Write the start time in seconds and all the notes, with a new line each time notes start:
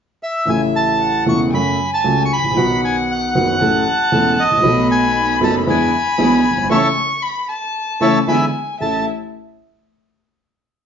0.23 E5
0.45 A1 A2 C#3 E3 A3 E4 E5
0.49 G#5
0.76 A5
1.01 F#5
1.26 E1 E2 C#3 E3 A3 E4 C#6
1.53 F#2 C#3 F#3 A3 F#4 G#5 B5
1.94 A5
2.04 C#2 C#3 F#3 A3 F#4
2.25 C#6
2.33 B5
2.38 G#1
2.43 A1
2.51 A#1 D#3
2.56 B1 B2 F#3 B3 F#4 F#5
2.85 G#5
3.11 F#5
3.35 F#1 F#2 D#3 F#3 B3 F#4
3.61 A1 A2 E3 A3 C#4 A4 A5
4.12 E1 E2 E3 A3 C#4 A4
4.40 D#5
4.44 G#1
4.51 A1
4.57 A#1
4.62 B1 B2 F#3 A3 B3 D#4 B5
4.66 A4
4.91 G#5
5.41 F#1 F#2 F#3 A3 B3 D#4 A4 A5
5.67 E2 E3 G#3 B3 D4 E4 G#4 G#5 B5
6.18 B1 B2 E3 G#3 B3 D4 E4 G#4
6.51 F#1
6.58 G1
6.64 G#1
6.70 C#3 E3 A3 C#4 E4 C#5 E5 A5 C#6
7.22 B5
7.49 A5
8.00 C#3 E3 A3 C#4 E4 C#5 E5 A5
8.28 D3 E3 G#3 B3 D4 E4 E5 G#5 B5
8.80 A1 A3 C#4 E4 A4 E5 A5